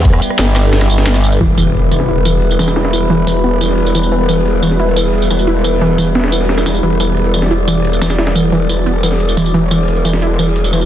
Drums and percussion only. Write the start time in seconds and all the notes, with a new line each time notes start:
0.05 kick, closed hi-hat
0.13 cross-stick
0.22 closed hi-hat, tambourine
0.30 cross-stick
0.39 snare, closed hi-hat
0.56 cross-stick, snare, closed hi-hat, open hi-hat, tambourine
0.64 closed hi-hat
0.73 snare, closed hi-hat
0.81 cross-stick, snare, closed hi-hat
0.90 closed hi-hat, tambourine
0.98 snare, closed hi-hat
1.07 snare, closed hi-hat
1.15 snare, closed hi-hat, tambourine
1.24 closed hi-hat, tambourine
1.32 closed hi-hat, tambourine
1.41 closed hi-hat
1.58 tambourine
1.74 closed hi-hat
1.83 closed hi-hat
1.91 closed hi-hat, tambourine
2.00 snare
2.08 closed hi-hat
2.25 closed hi-hat, tambourine
2.42 closed hi-hat
2.51 tambourine
2.59 snare, tambourine
2.68 snare, tambourine
2.76 snare, closed hi-hat
2.85 snare, closed hi-hat
2.93 tambourine
3.10 closed hi-hat
3.27 closed hi-hat, open hi-hat, tambourine
3.35 closed hi-hat
3.44 closed hi-hat
3.61 closed hi-hat, tambourine
3.69 snare
3.78 closed hi-hat
3.86 tambourine
3.95 closed hi-hat, tambourine
4.03 tambourine
4.12 closed hi-hat
4.29 closed hi-hat, tambourine
4.46 closed hi-hat
4.54 closed hi-hat
4.63 closed hi-hat, tambourine
4.71 snare
4.80 closed hi-hat
4.96 closed hi-hat, tambourine
5.14 closed hi-hat
5.22 tambourine
5.30 closed hi-hat, tambourine
5.39 tambourine
5.47 closed hi-hat
5.64 closed hi-hat, tambourine
5.81 closed hi-hat
5.98 closed hi-hat, open hi-hat, tambourine
6.07 closed hi-hat
6.15 snare, closed hi-hat
6.20 snare, closed hi-hat
6.24 snare, closed hi-hat
6.28 snare, closed hi-hat
6.32 closed hi-hat, tambourine
6.41 snare
6.49 snare, closed hi-hat
6.58 snare, closed hi-hat, tambourine
6.66 snare, closed hi-hat, tambourine
6.75 closed hi-hat, tambourine
6.83 closed hi-hat
7.00 closed hi-hat, tambourine
7.17 closed hi-hat
7.25 closed hi-hat
7.34 closed hi-hat, tambourine
7.42 snare
7.51 closed hi-hat
7.68 closed hi-hat, tambourine
7.85 closed hi-hat
7.93 tambourine
8.02 snare, closed hi-hat, tambourine
8.10 snare, closed hi-hat, tambourine
8.18 snare, closed hi-hat
8.27 snare, closed hi-hat
8.35 closed hi-hat, tambourine
8.52 closed hi-hat
8.69 closed hi-hat, open hi-hat, tambourine
8.78 closed hi-hat
8.86 closed hi-hat
9.03 closed hi-hat, tambourine
9.12 snare
9.20 closed hi-hat
9.29 tambourine
9.37 closed hi-hat, tambourine
9.46 tambourine
9.54 closed hi-hat
9.71 closed hi-hat, tambourine
9.88 closed hi-hat
9.96 closed hi-hat
10.05 closed hi-hat, tambourine
10.13 snare
10.22 closed hi-hat
10.39 closed hi-hat, tambourine
10.56 closed hi-hat
10.64 tambourine
10.73 tambourine
10.81 tambourine